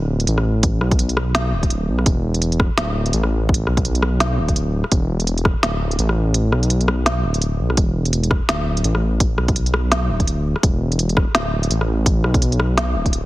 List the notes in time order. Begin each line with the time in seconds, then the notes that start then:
Already playing: D1
0.20 closed hi-hat
0.27 A1, closed hi-hat
0.38 cross-stick
0.63 kick, closed hi-hat
0.81 B1, cross-stick
0.91 kick, closed hi-hat
0.99 closed hi-hat
1.09 closed hi-hat
1.17 cross-stick
1.35 snare, closed hi-hat
1.53 D1
1.63 kick, closed hi-hat
1.70 closed hi-hat
1.88 B1
1.99 cross-stick
2.06 E1, kick, closed hi-hat
2.34 closed hi-hat
2.42 closed hi-hat
2.52 closed hi-hat
2.60 kick, cross-stick
2.77 D1, snare, closed hi-hat
3.06 closed hi-hat
3.13 A1, closed hi-hat
3.23 cross-stick
3.49 kick
3.54 closed hi-hat
3.67 B1, cross-stick
3.77 kick, closed hi-hat
3.85 closed hi-hat
3.95 closed hi-hat
4.02 cross-stick
4.20 snare, closed hi-hat
4.38 D1
4.48 kick, closed hi-hat
4.56 closed hi-hat
4.84 cross-stick
4.92 E1, kick, closed hi-hat
5.20 closed hi-hat
5.27 closed hi-hat
5.38 closed hi-hat
5.45 kick, cross-stick
5.63 D1, snare, closed hi-hat
5.91 closed hi-hat
5.99 A1, closed hi-hat
6.09 cross-stick
6.34 closed hi-hat
6.52 B1, cross-stick
6.63 closed hi-hat
6.70 closed hi-hat
6.81 closed hi-hat
6.88 cross-stick
7.06 snare, closed hi-hat
7.24 D1
7.34 closed hi-hat
7.42 closed hi-hat
7.60 B1
7.70 cross-stick
7.77 E1, kick, closed hi-hat
8.05 closed hi-hat
8.13 closed hi-hat
8.23 closed hi-hat
8.31 kick, cross-stick
8.49 D1, snare, closed hi-hat
8.77 closed hi-hat
8.84 A1, closed hi-hat
8.95 cross-stick
9.20 kick, closed hi-hat
9.38 B1, cross-stick
9.48 kick, closed hi-hat
9.56 closed hi-hat
9.66 closed hi-hat
9.74 cross-stick
9.92 snare, closed hi-hat
10.10 D1
10.20 kick, closed hi-hat
10.27 closed hi-hat
10.56 cross-stick
10.63 E1, kick, closed hi-hat
10.92 closed hi-hat
10.99 closed hi-hat
11.09 closed hi-hat
11.17 kick, cross-stick
11.35 D1, snare, closed hi-hat
11.63 closed hi-hat
11.70 A1, closed hi-hat
11.81 cross-stick
12.06 kick, closed hi-hat
12.24 B1, cross-stick
12.34 kick, closed hi-hat
12.42 closed hi-hat
12.52 closed hi-hat
12.60 cross-stick
12.78 snare, closed hi-hat
12.95 D1
13.06 kick, closed hi-hat
13.13 closed hi-hat